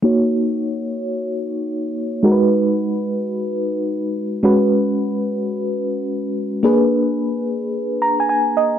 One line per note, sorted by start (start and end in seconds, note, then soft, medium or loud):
0.02 2.19 A#3 medium
0.02 2.20 D#4 medium
0.02 2.20 F#4 medium
0.02 2.20 C#5 medium
2.23 4.39 G#3 medium
2.23 4.40 D#4 medium
2.23 4.40 F#4 medium
2.23 2.33 A#4 medium
2.32 4.44 B4 medium
4.43 6.59 G#3 medium
4.43 6.60 C#4 medium
4.43 6.60 F#4 medium
4.43 6.61 B4 medium
6.63 8.79 A#3 medium
6.63 8.79 D4 medium
6.63 8.79 G#4 medium
6.63 8.79 B4 medium
8.02 8.19 A#5 medium
8.20 8.28 G#5 medium
8.29 8.55 G#5 medium
8.57 8.79 D#5 medium